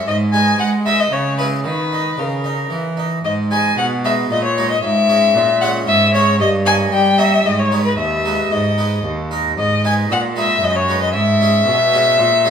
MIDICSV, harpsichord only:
0, 0, Header, 1, 2, 480
1, 0, Start_track
1, 0, Key_signature, 5, "minor"
1, 0, Tempo, 528169
1, 69, Time_signature, 3, 2, 24, 8
1, 8710, Tempo, 521286
1, 11395, End_track
2, 0, Start_track
2, 0, Title_t, "Harpsichord"
2, 0, Program_c, 0, 6
2, 60, Note_on_c, 0, 44, 52
2, 301, Note_on_c, 0, 56, 34
2, 308, Note_on_c, 0, 63, 38
2, 308, Note_on_c, 0, 71, 41
2, 504, Note_off_c, 0, 44, 0
2, 525, Note_off_c, 0, 56, 0
2, 536, Note_on_c, 0, 56, 56
2, 650, Note_off_c, 0, 63, 0
2, 650, Note_off_c, 0, 71, 0
2, 770, Note_off_c, 0, 56, 0
2, 781, Note_on_c, 0, 56, 42
2, 782, Note_on_c, 0, 63, 40
2, 785, Note_on_c, 0, 71, 46
2, 954, Note_off_c, 0, 56, 0
2, 955, Note_off_c, 0, 63, 0
2, 957, Note_off_c, 0, 71, 0
2, 1015, Note_on_c, 0, 49, 45
2, 1254, Note_on_c, 0, 56, 35
2, 1260, Note_on_c, 0, 68, 37
2, 1261, Note_on_c, 0, 64, 35
2, 1432, Note_off_c, 0, 56, 0
2, 1435, Note_off_c, 0, 68, 0
2, 1436, Note_off_c, 0, 64, 0
2, 1465, Note_off_c, 0, 49, 0
2, 1491, Note_on_c, 0, 51, 40
2, 1747, Note_on_c, 0, 63, 30
2, 1944, Note_off_c, 0, 51, 0
2, 1976, Note_on_c, 0, 49, 43
2, 2093, Note_off_c, 0, 63, 0
2, 2220, Note_on_c, 0, 63, 35
2, 2426, Note_off_c, 0, 49, 0
2, 2457, Note_on_c, 0, 52, 39
2, 2571, Note_off_c, 0, 63, 0
2, 2700, Note_on_c, 0, 63, 33
2, 2879, Note_off_c, 0, 63, 0
2, 2912, Note_off_c, 0, 52, 0
2, 2949, Note_on_c, 0, 44, 45
2, 3188, Note_on_c, 0, 56, 37
2, 3191, Note_on_c, 0, 63, 33
2, 3195, Note_on_c, 0, 71, 44
2, 3397, Note_off_c, 0, 44, 0
2, 3437, Note_on_c, 0, 47, 51
2, 3536, Note_off_c, 0, 56, 0
2, 3538, Note_off_c, 0, 63, 0
2, 3541, Note_off_c, 0, 71, 0
2, 3676, Note_on_c, 0, 56, 41
2, 3676, Note_on_c, 0, 63, 41
2, 3682, Note_on_c, 0, 71, 43
2, 3878, Note_off_c, 0, 47, 0
2, 3913, Note_on_c, 0, 46, 49
2, 4018, Note_off_c, 0, 63, 0
2, 4019, Note_off_c, 0, 56, 0
2, 4022, Note_off_c, 0, 71, 0
2, 4159, Note_on_c, 0, 56, 41
2, 4160, Note_on_c, 0, 63, 44
2, 4162, Note_on_c, 0, 71, 45
2, 4328, Note_off_c, 0, 56, 0
2, 4328, Note_off_c, 0, 63, 0
2, 4329, Note_off_c, 0, 71, 0
2, 4352, Note_off_c, 0, 46, 0
2, 4389, Note_on_c, 0, 44, 55
2, 4626, Note_on_c, 0, 56, 45
2, 4630, Note_on_c, 0, 61, 45
2, 4632, Note_on_c, 0, 73, 46
2, 4828, Note_off_c, 0, 44, 0
2, 4868, Note_on_c, 0, 46, 62
2, 4968, Note_off_c, 0, 56, 0
2, 4970, Note_off_c, 0, 61, 0
2, 4972, Note_off_c, 0, 73, 0
2, 5112, Note_on_c, 0, 56, 48
2, 5117, Note_on_c, 0, 61, 44
2, 5118, Note_on_c, 0, 73, 57
2, 5304, Note_off_c, 0, 46, 0
2, 5339, Note_on_c, 0, 44, 59
2, 5450, Note_off_c, 0, 56, 0
2, 5453, Note_off_c, 0, 61, 0
2, 5454, Note_off_c, 0, 73, 0
2, 5581, Note_on_c, 0, 56, 51
2, 5583, Note_on_c, 0, 61, 49
2, 5591, Note_on_c, 0, 73, 55
2, 5749, Note_off_c, 0, 56, 0
2, 5751, Note_off_c, 0, 61, 0
2, 5756, Note_off_c, 0, 73, 0
2, 5776, Note_off_c, 0, 44, 0
2, 5808, Note_on_c, 0, 43, 64
2, 6047, Note_on_c, 0, 58, 47
2, 6051, Note_on_c, 0, 63, 41
2, 6055, Note_on_c, 0, 73, 49
2, 6249, Note_off_c, 0, 43, 0
2, 6290, Note_on_c, 0, 55, 59
2, 6392, Note_off_c, 0, 58, 0
2, 6395, Note_off_c, 0, 63, 0
2, 6398, Note_off_c, 0, 73, 0
2, 6526, Note_on_c, 0, 58, 45
2, 6532, Note_on_c, 0, 63, 46
2, 6536, Note_on_c, 0, 73, 52
2, 6700, Note_off_c, 0, 58, 0
2, 6704, Note_off_c, 0, 63, 0
2, 6706, Note_off_c, 0, 73, 0
2, 6734, Note_off_c, 0, 55, 0
2, 6765, Note_on_c, 0, 44, 54
2, 7011, Note_on_c, 0, 56, 43
2, 7017, Note_on_c, 0, 71, 48
2, 7018, Note_on_c, 0, 63, 43
2, 7185, Note_off_c, 0, 56, 0
2, 7189, Note_off_c, 0, 63, 0
2, 7189, Note_off_c, 0, 71, 0
2, 7214, Note_off_c, 0, 44, 0
2, 7254, Note_on_c, 0, 39, 49
2, 7501, Note_on_c, 0, 56, 36
2, 7502, Note_on_c, 0, 63, 36
2, 7506, Note_on_c, 0, 71, 42
2, 7701, Note_off_c, 0, 39, 0
2, 7735, Note_on_c, 0, 44, 49
2, 7846, Note_off_c, 0, 56, 0
2, 7847, Note_off_c, 0, 63, 0
2, 7849, Note_off_c, 0, 71, 0
2, 7977, Note_on_c, 0, 56, 40
2, 7979, Note_on_c, 0, 63, 39
2, 7983, Note_on_c, 0, 71, 42
2, 8152, Note_off_c, 0, 56, 0
2, 8153, Note_off_c, 0, 63, 0
2, 8156, Note_off_c, 0, 71, 0
2, 8183, Note_off_c, 0, 44, 0
2, 8209, Note_on_c, 0, 39, 48
2, 8461, Note_on_c, 0, 63, 40
2, 8465, Note_on_c, 0, 70, 46
2, 8636, Note_off_c, 0, 63, 0
2, 8639, Note_off_c, 0, 70, 0
2, 8664, Note_off_c, 0, 39, 0
2, 8703, Note_on_c, 0, 44, 48
2, 8947, Note_on_c, 0, 56, 37
2, 8952, Note_on_c, 0, 63, 41
2, 8953, Note_on_c, 0, 71, 43
2, 9151, Note_off_c, 0, 44, 0
2, 9187, Note_on_c, 0, 46, 54
2, 9294, Note_off_c, 0, 56, 0
2, 9297, Note_off_c, 0, 63, 0
2, 9298, Note_off_c, 0, 71, 0
2, 9422, Note_on_c, 0, 56, 47
2, 9426, Note_on_c, 0, 63, 43
2, 9430, Note_on_c, 0, 71, 49
2, 9631, Note_off_c, 0, 46, 0
2, 9665, Note_on_c, 0, 42, 52
2, 9771, Note_off_c, 0, 56, 0
2, 9773, Note_off_c, 0, 63, 0
2, 9775, Note_off_c, 0, 71, 0
2, 9904, Note_on_c, 0, 56, 49
2, 9908, Note_on_c, 0, 63, 47
2, 9916, Note_on_c, 0, 71, 50
2, 10079, Note_off_c, 0, 56, 0
2, 10081, Note_off_c, 0, 63, 0
2, 10086, Note_off_c, 0, 71, 0
2, 10110, Note_off_c, 0, 42, 0
2, 10143, Note_on_c, 0, 44, 58
2, 10390, Note_on_c, 0, 61, 47
2, 10393, Note_on_c, 0, 56, 46
2, 10397, Note_on_c, 0, 68, 47
2, 10588, Note_off_c, 0, 44, 0
2, 10620, Note_on_c, 0, 47, 63
2, 10735, Note_off_c, 0, 61, 0
2, 10737, Note_off_c, 0, 56, 0
2, 10740, Note_off_c, 0, 68, 0
2, 10872, Note_on_c, 0, 56, 51
2, 10874, Note_on_c, 0, 61, 54
2, 10875, Note_on_c, 0, 68, 54
2, 11068, Note_off_c, 0, 47, 0
2, 11106, Note_on_c, 0, 46, 59
2, 11216, Note_off_c, 0, 56, 0
2, 11217, Note_off_c, 0, 61, 0
2, 11217, Note_off_c, 0, 68, 0
2, 11343, Note_on_c, 0, 56, 55
2, 11350, Note_on_c, 0, 61, 56
2, 11352, Note_on_c, 0, 68, 56
2, 11395, Note_off_c, 0, 46, 0
2, 11395, Note_off_c, 0, 56, 0
2, 11395, Note_off_c, 0, 61, 0
2, 11395, Note_off_c, 0, 68, 0
2, 11395, End_track
0, 0, End_of_file